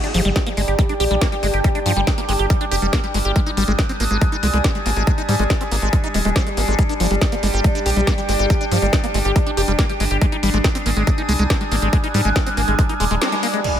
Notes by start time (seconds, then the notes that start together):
Already playing: G3 D4 G4
0.04 D4, closed hi-hat
0.12 G1 F3 D5, open hi-hat
0.25 G1 G3, closed hi-hat
0.36 G3, kick, snare, closed hi-hat
0.41 G5
0.46 A#3, closed hi-hat
0.57 G1 G#3, open hi-hat
0.68 G1 G4, closed hi-hat
0.79 G3, kick, closed hi-hat
0.89 D4, closed hi-hat
1.00 A#1 G4, open hi-hat
1.11 A#1 G3, closed hi-hat
1.21 A#3, kick, snare, closed hi-hat
1.32 G3, closed hi-hat
1.43 G1 G#3, open hi-hat
1.54 G1 G4, closed hi-hat
1.64 G3, kick, closed hi-hat
1.75 D4, closed hi-hat
1.86 G2 F3, open hi-hat
1.96 G1 G3, closed hi-hat
2.07 G3, kick, snare, closed hi-hat
2.18 A#3, closed hi-hat
2.29 G1 G#3, open hi-hat
2.39 G1 G4, closed hi-hat
2.50 G3, kick, closed hi-hat
2.61 D4, closed hi-hat
2.71 F1 G4, open hi-hat
2.82 F1 G3, closed hi-hat
2.93 A#3, kick, snare, closed hi-hat
3.04 G3, closed hi-hat
3.14 G1 G#3, open hi-hat
3.25 G1 G4, closed hi-hat
3.36 G#3 D#6, kick, closed hi-hat
3.46 D#4, closed hi-hat
3.57 G#1 G3, open hi-hat
3.68 G#1 G#3, closed hi-hat
3.79 G#3, kick, snare, closed hi-hat
3.89 C4, closed hi-hat
3.94 G#5
4.00 G#1 A#3, open hi-hat
4.11 G#1 G#3, closed hi-hat
4.21 G#3, kick, closed hi-hat
4.32 D#4, closed hi-hat
4.43 C2 G#3, open hi-hat
4.54 C2 G#3, closed hi-hat
4.64 C4, kick, snare, closed hi-hat
4.75 G#3, closed hi-hat
4.86 G#1 A#3, open hi-hat
4.96 G#1 G#3, closed hi-hat
5.07 G#3, kick, closed hi-hat
5.18 D#4, closed hi-hat
5.29 G#2 G3, open hi-hat
5.39 G#1 G#3, closed hi-hat
5.50 G#3, kick, snare, closed hi-hat
5.61 C4, closed hi-hat
5.71 G#1 A#3, open hi-hat
5.82 G#1 G#3, closed hi-hat
5.93 G#3, kick, closed hi-hat
6.04 D#4, closed hi-hat
6.14 D#1 G#3, open hi-hat
6.25 D#1 G#3, closed hi-hat
6.36 C4, kick, snare, closed hi-hat
6.46 G#3, closed hi-hat
6.57 G#1 A#3, open hi-hat
6.68 G#1 G#3, closed hi-hat
6.79 G3 G4, kick, closed hi-hat
6.83 D5
6.89 D4, closed hi-hat
7.00 G1 F3, open hi-hat
7.11 G1 G3, closed hi-hat
7.22 G3, kick, snare, closed hi-hat
7.32 A#3, closed hi-hat
7.43 G1 G#3 G5, open hi-hat
7.54 G1 G4, closed hi-hat
7.64 G3, kick, closed hi-hat
7.75 D4, closed hi-hat
7.86 A#1 G4, open hi-hat
7.96 A#1 G3, closed hi-hat
8.07 A#3, kick, snare, closed hi-hat
8.18 G3, closed hi-hat
8.29 G1 G#3, open hi-hat
8.39 G1 G4, closed hi-hat
8.50 G3, kick, closed hi-hat
8.61 D4, closed hi-hat
8.72 G2 F3, open hi-hat
8.82 G1 G3, closed hi-hat
8.93 G3, kick, snare, closed hi-hat
9.04 A#3, closed hi-hat
9.14 G1 G#3, open hi-hat
9.25 G1 G4, closed hi-hat
9.36 G3, kick, closed hi-hat
9.46 D4, closed hi-hat
9.57 F1 G4, open hi-hat
9.68 F1 G3, closed hi-hat
9.79 A#3, kick, snare, closed hi-hat
9.89 G3, closed hi-hat
10.00 G1 G#3, open hi-hat
10.11 G1 G4, closed hi-hat
10.22 G#3, kick, closed hi-hat
10.32 D#4, closed hi-hat
10.41 G#1 G3 D#6, open hi-hat
10.54 G#1 G#3, closed hi-hat
10.64 G#3, kick, snare, closed hi-hat
10.69 G#5
10.75 C4, closed hi-hat
10.86 G#1 A#3, open hi-hat
10.97 G#1 G#3, closed hi-hat
11.07 G#3, kick, closed hi-hat
11.18 D#4, closed hi-hat
11.29 C2 G#3, open hi-hat
11.39 C2 G#3, closed hi-hat
11.50 C4, kick, snare, closed hi-hat
11.61 G#3, closed hi-hat
11.71 G#1 A#3, open hi-hat
11.82 G#1 G#3, closed hi-hat
11.93 G#3, kick, closed hi-hat
12.04 D#4, closed hi-hat
12.14 G#2 G3, open hi-hat
12.25 G#1 G#3, closed hi-hat
12.36 G#3, kick, snare, closed hi-hat
12.46 C4, closed hi-hat
12.57 G#1 A#3, open hi-hat
12.68 G#1 G#3, closed hi-hat
12.79 G#3, kick, closed hi-hat
12.89 D#4, closed hi-hat
13.00 D#1 G#3, open hi-hat
13.11 D#1 G#3, closed hi-hat
13.21 C4, snare, closed hi-hat
13.32 G#3, closed hi-hat
13.43 A#3, open hi-hat
13.54 G#3, closed hi-hat
13.64 G3 D4 G4, crash, impact
13.69 D5